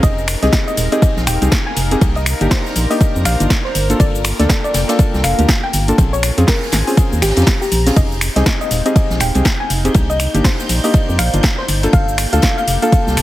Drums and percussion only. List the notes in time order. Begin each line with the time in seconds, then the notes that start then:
0.03 kick, closed hi-hat, ride, shaker
0.18 shaker
0.28 finger snap, open hi-hat, ride, shaker
0.43 snare, closed hi-hat, shaker
0.52 kick, snare, closed hi-hat, ride, shaker
0.68 ride, shaker
0.77 open hi-hat, ride, shaker
0.92 closed hi-hat, shaker
1.02 kick, closed hi-hat, ride, shaker
1.17 snare, shaker
1.27 finger snap, open hi-hat, ride, shaker
1.42 closed hi-hat, ride, shaker
1.52 kick, snare, closed hi-hat, ride, shaker
1.77 open hi-hat, ride, shaker
1.91 closed hi-hat, shaker
2.01 kick, closed hi-hat, ride, shaker
2.15 ride, shaker
2.26 finger snap, open hi-hat, ride, shaker
2.41 closed hi-hat, shaker
2.51 kick, snare, closed hi-hat, open hi-hat, shaker
2.66 snare, shaker
2.76 open hi-hat, ride, shaker
2.91 open hi-hat, shaker
3.01 kick, closed hi-hat, ride, shaker
3.16 shaker
3.25 finger snap, open hi-hat, ride, shaker
3.40 closed hi-hat, shaker
3.50 kick, snare, closed hi-hat, ride, shaker
3.65 snare
3.75 open hi-hat, ride, shaker
3.90 closed hi-hat, shaker
4.00 kick, closed hi-hat, ride, shaker
4.15 shaker
4.24 finger snap, open hi-hat, ride, shaker
4.39 snare, closed hi-hat, shaker
4.49 kick, snare, closed hi-hat, ride, shaker
4.64 ride, shaker
4.74 snare, open hi-hat, ride, shaker
4.88 snare, closed hi-hat, ride, shaker
4.99 kick, closed hi-hat, ride, shaker
5.14 snare, shaker
5.24 finger snap, open hi-hat, ride, shaker
5.38 closed hi-hat, ride, shaker
5.48 kick, snare, closed hi-hat, ride, shaker
5.73 open hi-hat, ride, shaker
5.88 closed hi-hat, shaker
5.98 kick, closed hi-hat, ride, shaker
6.14 ride, shaker
6.23 finger snap, open hi-hat, ride, shaker
6.38 closed hi-hat, shaker
6.47 kick, snare, closed hi-hat, open hi-hat, shaker
6.62 snare, shaker
6.72 snare, open hi-hat, ride, shaker
6.87 open hi-hat, shaker
6.97 kick, closed hi-hat, ride, shaker
7.13 shaker
7.22 finger snap, snare, open hi-hat, ride, shaker
7.28 snare, ride
7.36 snare, closed hi-hat, ride, shaker
7.42 snare, ride
7.46 kick, snare, closed hi-hat, open hi-hat, shaker
7.61 snare, shaker
7.72 open hi-hat, ride, shaker
7.86 snare, closed hi-hat, open hi-hat, shaker
7.96 kick, closed hi-hat, ride, shaker
8.12 shaker
8.21 finger snap, open hi-hat, ride, shaker
8.36 snare, closed hi-hat, shaker
8.46 kick, snare, closed hi-hat, ride, shaker
8.61 ride, shaker
8.71 open hi-hat, ride, shaker
8.86 closed hi-hat, shaker
8.96 kick, closed hi-hat, ride, shaker
9.10 snare, shaker
9.20 finger snap, open hi-hat, ride, shaker
9.35 closed hi-hat, ride, shaker
9.45 kick, snare, closed hi-hat, ride, shaker
9.70 open hi-hat, ride, shaker
9.85 closed hi-hat, shaker
9.94 kick, closed hi-hat, ride, shaker
10.09 ride, shaker
10.19 finger snap, open hi-hat, ride, shaker
10.35 closed hi-hat, shaker
10.44 kick, snare, closed hi-hat, open hi-hat, shaker
10.59 snare, shaker
10.69 open hi-hat, ride, shaker
10.84 open hi-hat, shaker
10.94 kick, closed hi-hat, ride, shaker
11.09 shaker
11.19 finger snap, open hi-hat, ride, shaker
11.34 closed hi-hat, shaker
11.43 kick, snare, closed hi-hat, ride, shaker
11.58 snare
11.68 open hi-hat, ride, shaker
11.83 closed hi-hat, shaker
11.93 kick, closed hi-hat, ride, shaker
12.09 shaker
12.18 finger snap, open hi-hat, ride, shaker
12.32 snare, closed hi-hat, shaker
12.42 kick, snare, closed hi-hat, ride, shaker
12.58 ride, shaker
12.68 open hi-hat, ride, shaker
12.82 closed hi-hat, shaker
12.92 kick, closed hi-hat, ride, shaker
13.07 snare, shaker
13.17 finger snap, open hi-hat, ride, shaker